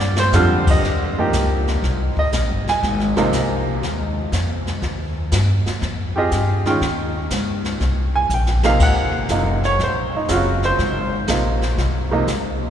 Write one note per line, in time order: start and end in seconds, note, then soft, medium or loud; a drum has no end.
0.00 0.31 G2 medium
0.00 0.19 D5 medium
0.00 snare medium
0.16 0.65 C5 medium
0.16 snare medium
0.32 0.81 F2 medium
0.32 0.83 D3 medium
0.32 0.83 G3 medium
0.32 0.84 C4 medium
0.32 0.84 F4 medium
0.32 snare medium
0.32 hi-hat pedal medium
0.67 1.31 D#5 medium
0.67 kick medium
0.67 crash medium
0.83 1.15 D#2 medium
0.83 brush sweep soft
0.83 kick soft
0.83 snare soft
1.16 1.80 F3 medium
1.16 1.80 A#3 medium
1.16 1.81 D#4 medium
1.16 1.81 G4 medium
1.16 muted upright bass stroke soft
1.33 1.81 C#2 medium
1.33 kick soft
1.33 snare medium
1.33 hi-hat pedal medium
1.67 snare soft
1.82 2.14 C2 medium
1.82 brush sweep soft
1.82 kick soft
1.82 snare soft
2.16 2.64 D#5 medium
2.16 muted upright bass stroke soft
2.16 kick soft
2.32 2.49 A#1 medium
2.32 kick soft
2.32 snare medium
2.32 hi-hat pedal medium
2.49 2.64 G1 soft
2.65 2.81 D#1 medium
2.65 snare soft
2.69 3.14 G#5 medium
2.83 3.31 G#1 medium
2.83 brush sweep soft
2.83 kick soft
2.83 snare soft
3.00 snare soft
3.16 3.79 C3 medium
3.16 3.79 F3 medium
3.16 3.80 A#3 medium
3.16 3.80 D#4 medium
3.16 snare soft
3.32 3.81 C2 medium
3.32 kick soft
3.32 snare medium
3.32 hi-hat pedal medium
3.82 4.30 D#2 medium
3.82 brush sweep soft
3.82 kick soft
3.82 snare soft
4.32 4.80 F2 medium
4.32 kick soft
4.32 snare medium
4.32 hi-hat pedal medium
4.67 snare soft
4.82 5.30 D#2 medium
4.82 brush sweep soft
4.82 kick soft
4.82 snare soft
5.32 5.63 G2 medium
5.32 kick soft
5.32 snare medium
5.32 hi-hat pedal medium
5.66 muted upright bass stroke soft
5.66 snare soft
5.81 6.30 F2 medium
5.81 brush sweep soft
5.81 kick soft
5.81 snare soft
6.16 6.62 C4 medium
6.16 6.63 F4 medium
6.16 6.62 G4 medium
6.16 6.63 G#4 medium
6.16 6.63 D#5 medium
6.31 6.80 G2 medium
6.31 kick soft
6.31 snare medium
6.31 hi-hat pedal soft
6.65 6.80 D#3 medium
6.65 6.80 G#3 medium
6.65 6.80 C#4 medium
6.65 6.80 F4 medium
6.65 7.12 G5 medium
6.65 snare soft
6.81 7.29 D#2 medium
6.81 brush sweep soft
6.81 kick soft
6.81 snare soft
7.30 7.79 C#2 medium
7.30 kick soft
7.30 snare medium
7.30 hi-hat pedal medium
7.64 snare soft
7.80 8.28 C2 medium
7.80 brush sweep soft
7.80 kick soft
7.80 snare soft
8.16 8.30 G#5 medium
8.29 8.78 A#1 medium
8.29 hi-hat pedal medium
8.34 8.65 G5 medium
8.47 snare medium
8.63 9.27 C3 medium
8.63 9.27 F3 medium
8.63 9.27 A#3 medium
8.63 9.27 D#4 medium
8.63 8.80 F5 medium
8.63 snare medium
8.79 9.28 G#1 medium
8.79 9.61 F#5 medium
8.79 brush sweep soft
8.79 kick medium
8.79 snare soft
8.79 crash medium
9.29 9.77 F#1 medium
9.29 9.60 C3 medium
9.29 9.61 F3 soft
9.29 9.61 A#3 soft
9.29 9.61 D#4 medium
9.29 kick soft
9.29 snare medium
9.29 hi-hat pedal medium
9.63 9.80 C#5 medium
9.63 snare soft
9.79 10.10 A#1 medium
9.79 brush sweep soft
9.79 kick soft
9.79 snare soft
9.83 10.14 C5 medium
10.13 10.30 D#4 medium
10.13 muted upright bass stroke soft
10.28 10.77 F#1 medium
10.28 11.06 C#3 medium
10.28 11.06 F#3 medium
10.28 11.06 C4 medium
10.28 11.06 F4 medium
10.28 kick soft
10.28 snare medium
10.28 hi-hat pedal medium
10.33 10.64 F#4 medium
10.62 11.10 C5 medium
10.62 snare soft
10.78 11.27 G#1 medium
10.78 brush sweep soft
10.78 kick soft
10.78 snare soft
11.27 11.76 A#1 medium
11.27 11.59 C3 medium
11.27 11.59 F3 soft
11.27 11.59 A#3 soft
11.27 11.60 D#4 medium
11.27 kick soft
11.27 snare medium
11.27 hi-hat pedal medium
11.62 snare soft
11.78 12.26 C2 medium
11.78 brush sweep soft
11.78 kick soft
11.78 snare soft
12.11 12.26 C3 medium
12.11 12.26 F3 medium
12.11 12.26 A#3 medium
12.11 12.27 D#4 medium
12.27 12.70 C#2 medium
12.27 kick soft
12.27 snare medium
12.27 hi-hat pedal medium